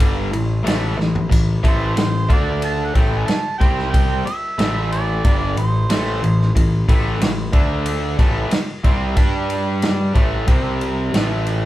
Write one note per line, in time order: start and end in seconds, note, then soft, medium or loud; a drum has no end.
0.00 0.30 G1 medium
0.00 0.30 G2 medium
0.00 0.31 D3 medium
0.00 0.31 G3 medium
0.00 kick loud
0.00 ride loud
0.32 0.63 A1 medium
0.32 0.58 A2 medium
0.32 0.58 E3 medium
0.32 ride medium
0.63 0.95 A1 medium
0.63 0.96 A2 medium
0.63 0.96 E3 medium
0.63 0.97 A3 medium
0.63 ride loud
0.68 snare loud
0.97 1.28 A1 medium
0.97 1.24 A2 medium
0.97 1.24 E3 medium
0.97 snare medium
1.15 floor tom medium
1.30 1.61 A1 medium
1.30 1.56 A2 medium
1.30 1.56 E3 medium
1.30 kick loud
1.30 ride medium
1.30 splash medium
1.63 1.94 A1 medium
1.63 1.95 A2 medium
1.63 1.95 E3 medium
1.63 1.96 A3 medium
1.63 kick loud
1.63 ride medium
1.67 1.96 C5 medium
1.96 2.27 A1 medium
1.96 2.23 A2 medium
1.96 2.23 E3 medium
1.96 2.28 C5 medium
1.96 snare loud
1.96 ride medium
2.29 2.91 D2 medium
2.29 2.94 D3 medium
2.29 2.94 A3 medium
2.29 2.94 D4 medium
2.29 2.61 D5 medium
2.29 kick loud
2.29 ride medium
2.62 2.87 A5 loud
2.62 ride medium
2.85 2.98 F#5 medium
2.95 3.25 A1 medium
2.95 3.27 A2 medium
2.95 3.27 E3 medium
2.95 3.27 A3 medium
2.95 3.19 G5 medium
2.95 kick loud
2.95 ride medium
3.18 3.27 G#5 medium
3.25 3.57 A5 loud
3.25 muted picked electric bass stroke soft
3.25 muted overdriven electric guitar stroke medium
3.25 snare loud
3.25 ride medium
3.58 4.22 C2 medium
3.58 4.25 C3 medium
3.58 4.25 G3 medium
3.58 4.25 C4 medium
3.58 3.90 G5 loud
3.58 kick loud
3.58 ride medium
3.79 snare soft
3.90 4.22 G5 loud
3.90 kick loud
3.90 ride medium
4.25 4.87 E5 loud
4.25 muted picked electric bass stroke soft
4.25 muted overdriven electric guitar stroke medium
4.25 ride medium
4.59 5.20 A1 medium
4.59 5.24 A2 medium
4.59 5.23 E3 loud
4.59 5.24 A3 loud
4.59 snare loud
4.59 ride medium
4.92 5.54 D5 loud
4.92 ride medium
5.24 5.55 G1 medium
5.24 5.56 G2 medium
5.24 5.56 D3 loud
5.24 5.57 G3 loud
5.24 kick loud
5.24 ride medium
5.56 5.87 A1 medium
5.56 5.84 A2 medium
5.56 5.84 E3 medium
5.56 6.52 C5 medium
5.56 ride medium
5.90 6.21 A1 medium
5.90 6.22 A2 medium
5.90 6.22 E3 medium
5.90 6.22 A3 loud
5.90 snare loud
5.90 ride loud
6.23 6.53 A1 medium
6.23 6.49 A2 medium
6.23 6.49 E3 medium
6.23 ride medium
6.42 snare soft
6.55 6.86 A1 medium
6.55 6.82 A2 medium
6.55 6.82 E3 medium
6.55 kick medium
6.55 ride loud
6.88 7.18 A1 medium
6.88 7.20 A2 loud
6.88 7.20 E3 medium
6.88 7.21 A3 medium
6.88 kick loud
6.88 ride medium
7.19 7.51 A1 medium
7.19 7.48 A2 medium
7.19 7.48 E3 medium
7.19 snare loud
7.19 ride loud
7.52 8.15 D2 medium
7.52 8.18 D3 medium
7.52 8.18 A3 loud
7.52 8.18 D4 loud
7.52 kick loud
7.52 ride medium
7.86 ride loud
8.19 8.48 A1 medium
8.19 8.49 A2 medium
8.19 8.51 E3 loud
8.19 8.52 A3 loud
8.19 kick loud
8.19 ride medium
8.49 muted picked electric bass stroke soft
8.49 muted overdriven electric guitar stroke medium
8.49 snare loud
8.49 ride medium
8.84 9.15 C2 medium
8.84 9.16 C3 medium
8.84 9.15 G3 loud
8.84 9.16 C4 medium
8.84 kick loud
8.84 ride medium
9.16 10.11 G2 medium
9.16 10.14 G3 medium
9.16 10.14 D4 medium
9.16 10.15 G4 loud
9.16 kick loud
9.16 ride medium
9.50 ride medium
9.82 snare loud
9.82 ride medium
10.14 10.46 A1 medium
10.14 10.47 A2 medium
10.14 10.47 E3 medium
10.14 10.48 A3 medium
10.14 kick loud
10.14 ride medium
10.47 11.10 C2 medium
10.47 11.13 C3 loud
10.47 11.14 G3 loud
10.47 11.14 C4 loud
10.47 kick loud
10.47 ride medium
10.81 ride medium
11.13 11.65 A1 medium
11.13 11.65 A2 medium
11.13 11.65 E3 medium
11.13 11.65 A3 medium
11.13 snare loud
11.13 ride medium
11.46 ride medium